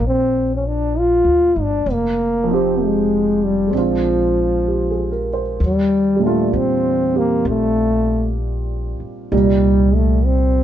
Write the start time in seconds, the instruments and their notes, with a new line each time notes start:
Already playing: grand piano A#2 D4 F4 A4
0.00 upright bass A#1
0.07 trombone C4
0.55 trombone C#4
0.67 trombone D4
0.99 trombone F4
1.24 upright bass D2
1.56 upright bass G1
1.61 trombone D4
1.86 upright bass F1
1.92 trombone A#3
2.44 grand piano F3 C4
2.51 trombone C4, grand piano D#4 G4
2.85 trombone G#3
3.44 trombone G3
3.67 grand piano G#3 C4
3.73 upright bass A#1, trombone F3, grand piano D4
3.78 grand piano F4
4.68 grand piano G4
4.91 grand piano G#4
5.12 grand piano A#4
5.33 grand piano C5
5.60 upright bass D#2
5.64 trombone G3
6.16 grand piano A#2 G3
6.23 trombone A3, grand piano D4 F4
6.53 upright bass E2, trombone C4
7.12 grand piano C4 D#4 G4
7.18 trombone A#3
7.45 upright bass A#1
7.49 trombone A3
9.00 muted upright bass stroke
9.32 upright bass C2, grand piano A#2 G3 D#4, trombone G3
9.95 trombone A3
10.26 trombone C4